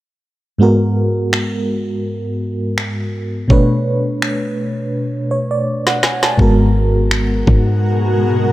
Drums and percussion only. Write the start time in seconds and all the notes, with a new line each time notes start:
1.33 finger snap
2.78 finger snap
3.50 kick
4.22 finger snap
5.87 snare
6.03 snare
6.23 snare
6.39 kick
7.11 finger snap
7.47 kick